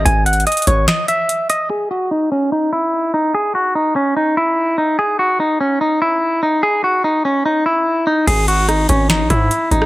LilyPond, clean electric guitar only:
\new Staff \with { instrumentName = "Clean electric guitar" } { \time 4/4 \key e \lydian \tempo 4 = 146 gis''8 fis''8 dis''8 cis''8 dis''8 e''4 dis''8 | gis'8 fis'8 dis'8 cis'8 dis'8 e'4 dis'8 | gis'8 fis'8 dis'8 cis'8 dis'8 e'4 dis'8 | gis'8 fis'8 dis'8 cis'8 dis'8 e'4 dis'8 |
gis'8 fis'8 dis'8 cis'8 dis'8 e'4 dis'8 | gis'8 fis'8 dis'8 cis'8 dis'8 e'4 dis'8 | }